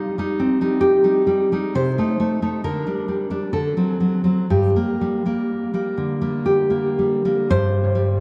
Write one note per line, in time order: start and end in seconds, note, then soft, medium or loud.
0.00 0.17 G3 soft
0.00 0.18 D#4 soft
0.00 0.78 F5 medium
0.18 0.60 G3 soft
0.18 0.60 D#4 soft
0.40 1.76 C4 soft
0.61 1.03 G3 soft
0.61 1.03 D#4 soft
0.81 1.71 G4 medium
1.04 1.25 G3 soft
1.04 1.52 D#4 soft
1.27 1.51 G3 soft
1.52 1.73 G3 soft
1.52 1.74 D#4 soft
1.75 1.97 C3 medium
1.75 2.58 C5 medium
1.98 2.19 A3 soft
1.98 2.41 D#4 soft
2.20 2.41 A3 soft
2.42 2.61 A3 soft
2.42 2.61 D#4 soft
2.64 2.84 D3 soft
2.64 3.48 A#4 medium
2.87 3.07 G3 soft
2.87 3.29 D4 soft
3.08 3.29 G3 soft
3.30 3.50 G3 soft
3.30 3.50 D4 soft
3.53 3.74 D3 medium
3.53 4.45 A4 medium
3.77 3.99 F#3 soft
3.77 4.23 C4 soft
4.00 4.23 F#3 soft
4.24 4.46 F#3 soft
4.24 4.46 C4 soft
4.50 4.74 G2 soft
4.50 6.42 G4 medium
4.76 5.00 G3 soft
4.76 5.25 A#3 soft
5.01 5.24 G3 soft
5.26 5.72 G3 soft
5.26 5.73 A#3 soft
5.74 6.20 G3 soft
5.74 6.20 A#3 soft
5.98 7.50 D3 soft
6.21 6.69 G3 soft
6.21 6.69 A#3 soft
6.46 7.45 G4 medium
6.70 6.98 G3 soft
6.70 7.24 A#3 soft
6.99 7.24 G3 soft
7.25 7.47 G3 soft
7.25 7.47 A#3 soft
7.50 8.20 G2 medium
7.50 8.20 C5 loud
7.95 8.20 G3 medium